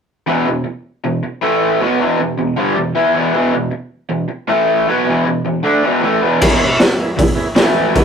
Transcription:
0.27 overdriven electric guitar E2 B2 E3
0.46 overdriven electric guitar E2 B2
0.64 muted overdriven electric guitar stroke
1.04 overdriven electric guitar E2 B2
1.23 muted overdriven electric guitar stroke
1.42 overdriven electric guitar A2 E3 A3
1.81 overdriven electric guitar B2 F#3 B3
1.99 overdriven electric guitar E2 B2 E3
2.19 overdriven electric guitar E2 B2
2.38 overdriven electric guitar E2 B2
2.56 overdriven electric guitar G2 D3 G3
2.76 overdriven electric guitar E2 B2
2.95 overdriven electric guitar E3 B3 E4
3.15 overdriven electric guitar E2 B2 E3
3.33 overdriven electric guitar E2 B2 E3
3.53 overdriven electric guitar E2 B2
3.72 muted overdriven electric guitar stroke
4.10 overdriven electric guitar E2 B2
4.29 muted overdriven electric guitar stroke
4.48 overdriven electric guitar A2 E3 A3
4.88 overdriven electric guitar B2 F#3 B3
5.06 overdriven electric guitar E2 B2 E3
5.25 overdriven electric guitar E2 B2
5.45 overdriven electric guitar E2 B2
5.63 overdriven electric guitar D3 A3 D4
5.84 overdriven electric guitar E2 B2 E3
6.02 overdriven electric guitar A2 E3 A3
6.21 overdriven electric guitar E2 B2 E3
6.41 overdriven electric guitar E2 B2 E3, transistor combo organ B3 E4 G#4, kick, crash
6.60 overdriven electric guitar E2 B2, transistor combo organ B3 E4 F#4
6.79 transistor combo organ B3 E4 B4, muted overdriven electric guitar stroke, snare, open hi-hat
6.98 transistor combo organ B3 E4 G#4
7.17 overdriven electric guitar E2 B2, transistor combo organ B3 E4 G#4, kick, open hi-hat
7.35 transistor combo organ B3 E4 G#4, muted overdriven electric guitar stroke
7.55 overdriven electric guitar A2 E3 A3, transistor combo organ A3 E4, snare, open hi-hat
7.59 transistor combo organ A4
7.77 transistor combo organ A3 E4 F#4
7.93 overdriven electric guitar B2 F#3 B3, transistor combo organ B3 E4 G#4, kick, open hi-hat

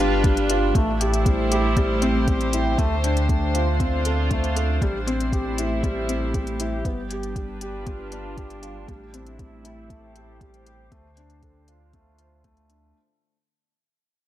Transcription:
Already playing: sub bass G1, upright piano G3 F4, string section G3 D4 F4 B4
0.00 upright piano D4
0.24 upright piano G3, kick, closed hi-hat
0.37 closed hi-hat
0.50 upright piano F4, closed hi-hat
0.74 sub bass A1, string section A3, upright piano A3, kick, closed hi-hat
0.89 string section E4
1.00 upright piano G4, closed hi-hat
1.13 string section C5, closed hi-hat
1.22 string section G4
1.26 upright piano G3, kick, closed hi-hat
1.51 upright piano G4, closed hi-hat
1.77 upright piano G3, kick, closed hi-hat
2.02 upright piano C4, closed hi-hat
2.27 upright piano G3, kick, closed hi-hat
2.41 closed hi-hat
2.53 upright piano E4, closed hi-hat
2.78 sub bass D2, string section D3, upright piano A3, kick, closed hi-hat
2.93 string section D4
3.04 upright piano D4, closed hi-hat
3.17 closed hi-hat
3.29 upright piano A3, kick, closed hi-hat
3.55 upright piano F4, closed hi-hat
3.71 string section F4
3.80 upright piano C4, kick, closed hi-hat
4.05 upright piano A4, closed hi-hat
4.31 upright piano A3, kick, closed hi-hat
4.44 closed hi-hat
4.56 upright piano A4, closed hi-hat
4.82 sub bass A1, upright piano G3, string section A3, kick, closed hi-hat
5.07 upright piano C4, string section E4, closed hi-hat
5.20 closed hi-hat
5.32 upright piano G4, kick, closed hi-hat
5.58 upright piano E4, closed hi-hat
5.72 string section G4
5.83 upright piano G3, kick, closed hi-hat
6.09 upright piano C4, closed hi-hat
6.34 upright piano G3, kick, closed hi-hat
6.47 closed hi-hat
6.60 upright piano E4, closed hi-hat
6.84 sub bass G1, string section G3, upright piano B3, kick, closed hi-hat
7.11 upright piano G4, closed hi-hat
7.22 string section D4, closed hi-hat
7.32 string section B4
7.36 upright piano G3, kick, closed hi-hat
7.61 upright piano G4, closed hi-hat
7.76 string section F4
7.87 upright piano G3, kick, closed hi-hat
8.12 upright piano D4, closed hi-hat
8.37 upright piano G4, kick, closed hi-hat
8.50 closed hi-hat
8.62 upright piano F4, closed hi-hat
8.88 sub bass A1, upright piano G3, string section A3, kick, closed hi-hat
9.06 string section E4
9.13 upright piano C4, closed hi-hat
9.27 closed hi-hat
9.39 upright piano G3, kick, closed hi-hat
9.64 upright piano E4, string section G4, closed hi-hat
9.80 string section C5
9.90 upright piano A3, kick, closed hi-hat
10.15 upright piano G4, closed hi-hat
10.41 upright piano G3, kick, closed hi-hat
10.54 closed hi-hat
10.66 upright piano G4, closed hi-hat
10.92 sub bass D2, string section D3, upright piano A3, kick, closed hi-hat
11.08 string section D4
11.17 upright piano D4, closed hi-hat
11.30 closed hi-hat
11.43 upright piano A4, kick, closed hi-hat
11.49 string section F4
11.68 upright piano F4, closed hi-hat
11.93 upright piano A3, kick, closed hi-hat
12.18 upright piano C5, closed hi-hat
12.44 upright piano A3, kick, closed hi-hat
12.57 closed hi-hat
12.70 upright piano D4, closed hi-hat

